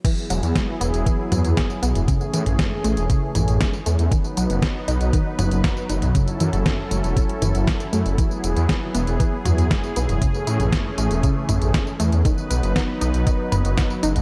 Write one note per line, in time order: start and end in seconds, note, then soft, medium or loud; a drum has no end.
0.04 0.13 E3 loud
0.04 2.06 F#3 medium
0.04 2.06 B3 medium
0.04 2.06 E4 medium
0.04 2.06 G#4 medium
0.04 kick loud
0.04 closed hi-hat medium
0.04 crash loud
0.04 tambourine soft
0.18 tambourine soft
0.30 0.40 E1 loud
0.30 0.45 F#3 loud
0.30 closed hi-hat medium
0.30 tambourine medium
0.43 0.53 E2 medium
0.43 closed hi-hat medium
0.43 tambourine soft
0.55 0.70 G#3 medium
0.55 kick loud
0.55 snare loud
0.55 closed hi-hat medium
0.55 tambourine soft
0.81 0.91 E1 medium
0.81 0.90 B3 loud
0.81 closed hi-hat medium
0.81 tambourine medium
0.94 1.04 E1 medium
0.94 closed hi-hat medium
0.94 tambourine soft
1.06 1.15 E3 loud
1.06 kick loud
1.06 closed hi-hat medium
1.06 tambourine soft
1.32 1.42 E2 loud
1.32 1.46 F#3 loud
1.32 closed hi-hat medium
1.32 mid tom medium
1.32 tambourine medium
1.44 1.55 E2 medium
1.44 closed hi-hat medium
1.44 tambourine soft
1.57 1.72 G#3 medium
1.57 kick loud
1.57 snare loud
1.57 closed hi-hat medium
1.57 tambourine soft
1.70 tambourine soft
1.83 1.93 B1 loud
1.83 1.91 B3 loud
1.83 closed hi-hat medium
1.83 tambourine medium
1.95 2.05 E1 medium
1.95 closed hi-hat medium
1.95 mid tom medium
1.95 tambourine soft
2.08 2.17 C#3 loud
2.08 4.09 E3 medium
2.08 4.10 A3 medium
2.08 4.10 C#4 medium
2.08 4.10 G#4 medium
2.08 kick loud
2.08 closed hi-hat medium
2.08 tambourine soft
2.21 tambourine soft
2.34 2.44 A2 loud
2.34 2.48 E3 loud
2.34 closed hi-hat medium
2.34 tambourine medium
2.46 2.56 A1 medium
2.46 closed hi-hat medium
2.46 mid tom medium
2.46 tambourine soft
2.59 2.74 G#3 medium
2.59 kick loud
2.59 snare loud
2.59 closed hi-hat medium
2.59 tambourine soft
2.84 2.94 A1 medium
2.84 2.93 A3 loud
2.84 closed hi-hat medium
2.84 tambourine medium
2.97 3.07 E1 medium
2.97 closed hi-hat medium
2.97 tambourine soft
3.10 3.19 C#3 loud
3.10 kick loud
3.10 closed hi-hat medium
3.10 tambourine soft
3.35 3.45 A1 loud
3.35 3.50 E3 loud
3.35 closed hi-hat medium
3.35 mid tom medium
3.35 tambourine medium
3.48 3.58 A1 medium
3.48 closed hi-hat medium
3.48 tambourine soft
3.61 3.75 G#3 medium
3.61 kick loud
3.61 snare loud
3.61 closed hi-hat medium
3.61 tambourine soft
3.73 tambourine soft
3.86 3.96 E2 loud
3.86 3.95 A3 loud
3.86 closed hi-hat medium
3.86 tambourine medium
3.99 4.09 E2 medium
3.99 closed hi-hat medium
3.99 tambourine soft
4.11 4.20 D#3 loud
4.11 10.18 F#3 medium
4.11 6.13 B3 medium
4.11 6.13 D#4 medium
4.11 6.13 B4 medium
4.11 kick loud
4.11 closed hi-hat medium
4.11 tambourine soft
4.24 tambourine soft
4.37 4.47 B1 medium
4.37 4.52 F#3 loud
4.37 closed hi-hat medium
4.37 tambourine medium
4.50 4.60 F#1 medium
4.50 closed hi-hat medium
4.50 tambourine soft
4.62 4.77 B3 medium
4.62 kick loud
4.62 snare loud
4.62 closed hi-hat medium
4.62 tambourine soft
4.88 4.98 B1 loud
4.88 4.97 D#4 loud
4.88 closed hi-hat medium
4.88 tambourine medium
5.01 5.11 B1 medium
5.01 closed hi-hat medium
5.01 tambourine soft
5.13 5.22 D#3 loud
5.13 kick loud
5.13 closed hi-hat medium
5.13 tambourine soft
5.39 5.49 F#1 medium
5.39 5.53 F#3 loud
5.39 closed hi-hat medium
5.39 mid tom medium
5.39 tambourine medium
5.51 5.61 F#1 medium
5.51 closed hi-hat medium
5.51 tambourine soft
5.64 5.79 B3 medium
5.64 kick loud
5.64 snare loud
5.64 closed hi-hat medium
5.64 tambourine soft
5.77 tambourine soft
5.89 6.00 F#1 medium
5.89 5.98 D#4 loud
5.89 closed hi-hat medium
5.89 tambourine medium
6.02 6.12 B1 medium
6.02 closed hi-hat medium
6.02 mid tom medium
6.02 tambourine soft
6.15 6.24 C#3 loud
6.15 8.16 C#4 medium
6.15 10.18 E4 medium
6.15 8.16 A4 medium
6.15 kick loud
6.15 closed hi-hat medium
6.15 tambourine soft
6.28 closed hi-hat soft
6.28 tambourine soft
6.40 6.50 F#2 loud
6.40 6.55 E3 loud
6.40 closed hi-hat medium
6.40 tambourine medium
6.53 6.63 F#1 medium
6.53 closed hi-hat soft
6.53 mid tom medium
6.53 tambourine soft
6.66 6.80 F#3 medium
6.66 kick loud
6.66 snare loud
6.66 closed hi-hat medium
6.66 tambourine soft
6.91 7.01 F#1 medium
6.91 7.00 A3 loud
6.91 closed hi-hat medium
6.91 tambourine medium
7.04 7.14 E1 medium
7.04 closed hi-hat medium
7.04 tambourine soft
7.17 7.25 C#3 loud
7.17 kick loud
7.17 closed hi-hat medium
7.17 tambourine soft
7.29 closed hi-hat soft
7.42 7.52 F#1 loud
7.42 7.57 E3 loud
7.42 closed hi-hat medium
7.42 mid tom medium
7.42 tambourine medium
7.55 7.65 F#1 medium
7.55 closed hi-hat medium
7.55 tambourine soft
7.67 7.82 F#3 medium
7.67 kick loud
7.67 snare loud
7.67 closed hi-hat medium
7.67 tambourine soft
7.80 closed hi-hat soft
7.80 tambourine soft
7.93 8.03 F#2 loud
7.93 8.02 A3 loud
7.93 closed hi-hat medium
7.93 tambourine medium
8.06 8.16 F#1 medium
8.06 closed hi-hat soft
8.06 tambourine soft
8.18 8.27 E3 loud
8.18 10.20 B3 medium
8.18 12.21 G#4 medium
8.18 kick loud
8.18 closed hi-hat medium
8.18 tambourine soft
8.31 tambourine soft
8.44 8.54 E1 loud
8.44 8.58 F#4 medium
8.44 closed hi-hat medium
8.44 tambourine medium
8.56 8.67 E2 medium
8.56 closed hi-hat soft
8.56 tambourine soft
8.69 8.84 G#3 medium
8.69 kick loud
8.69 snare loud
8.69 closed hi-hat medium
8.69 tambourine soft
8.94 9.05 E1 loud
8.94 9.03 B3 loud
8.94 closed hi-hat medium
8.94 tambourine medium
9.07 9.17 E1 medium
9.07 closed hi-hat medium
9.07 tambourine soft
9.20 9.29 E3 loud
9.20 kick loud
9.20 closed hi-hat medium
9.20 tambourine soft
9.45 9.55 E2 loud
9.45 9.60 F#4 medium
9.45 closed hi-hat medium
9.45 mid tom medium
9.45 tambourine medium
9.58 9.68 E2 medium
9.58 closed hi-hat medium
9.58 tambourine soft
9.71 9.85 G#3 medium
9.71 kick loud
9.71 snare loud
9.71 closed hi-hat medium
9.71 tambourine soft
9.84 tambourine soft
9.96 10.06 B1 medium
9.96 10.05 B3 loud
9.96 closed hi-hat medium
9.96 tambourine medium
10.09 10.19 E1 medium
10.09 closed hi-hat medium
10.09 mid tom medium
10.09 tambourine soft
10.22 10.30 C#3 loud
10.22 12.23 E3 medium
10.22 12.23 A3 medium
10.22 12.23 C#4 medium
10.22 kick loud
10.22 closed hi-hat medium
10.22 tambourine soft
10.34 tambourine soft
10.47 10.57 A2 loud
10.47 10.62 E4 medium
10.47 closed hi-hat medium
10.47 tambourine medium
10.60 10.70 A1 medium
10.60 closed hi-hat soft
10.60 mid tom medium
10.60 tambourine soft
10.72 10.87 G#3 medium
10.72 kick loud
10.72 snare loud
10.72 closed hi-hat medium
10.72 tambourine soft
10.98 11.08 A1 medium
10.98 11.07 A3 loud
10.98 closed hi-hat medium
10.98 tambourine medium
11.11 11.21 E1 medium
11.11 closed hi-hat soft
11.11 tambourine soft
11.23 11.32 C#3 loud
11.23 kick loud
11.23 closed hi-hat medium
11.23 tambourine soft
11.49 11.59 A1 medium
11.49 11.63 E4 medium
11.49 closed hi-hat medium
11.49 mid tom medium
11.49 tambourine medium
11.62 11.72 A1 medium
11.62 closed hi-hat medium
11.62 tambourine soft
11.74 11.89 G#3 medium
11.74 kick loud
11.74 snare loud
11.74 closed hi-hat medium
11.74 tambourine soft
11.87 tambourine soft
12.00 12.10 E2 loud
12.00 12.08 A3 loud
12.00 closed hi-hat medium
12.00 tambourine medium
12.12 12.22 E2 medium
12.12 closed hi-hat soft
12.12 tambourine soft
12.25 12.34 D#3 loud
12.25 14.22 F#3 medium
12.25 14.22 B3 medium
12.25 14.22 D#4 medium
12.25 14.22 B4 medium
12.25 kick loud
12.25 closed hi-hat medium
12.25 tambourine soft
12.38 tambourine soft
12.50 12.61 B1 loud
12.50 12.65 B4 medium
12.50 closed hi-hat medium
12.50 tambourine medium
12.63 12.73 F#1 medium
12.63 closed hi-hat soft
12.63 tambourine soft
12.76 12.91 B3 medium
12.76 kick loud
12.76 snare loud
12.76 closed hi-hat medium
12.76 tambourine soft
13.01 13.11 B1 loud
13.01 13.10 D#4 loud
13.01 closed hi-hat medium
13.01 tambourine medium
13.14 13.24 B1 medium
13.14 closed hi-hat medium
13.14 tambourine soft
13.27 13.35 D#3 loud
13.27 kick loud
13.27 closed hi-hat medium
13.27 tambourine soft
13.52 13.62 F#1 medium
13.52 13.67 B4 medium
13.52 closed hi-hat medium
13.52 mid tom medium
13.52 tambourine medium
13.65 13.75 F#1 medium
13.65 closed hi-hat medium
13.65 tambourine soft
13.78 13.92 B3 medium
13.78 kick loud
13.78 snare loud
13.78 closed hi-hat medium
13.78 tambourine soft
13.90 tambourine soft
14.03 14.13 F#1 loud
14.03 14.12 D#4 loud
14.03 closed hi-hat medium
14.03 tambourine medium
14.16 14.22 B1 medium
14.16 closed hi-hat medium
14.16 mid tom medium
14.16 tambourine soft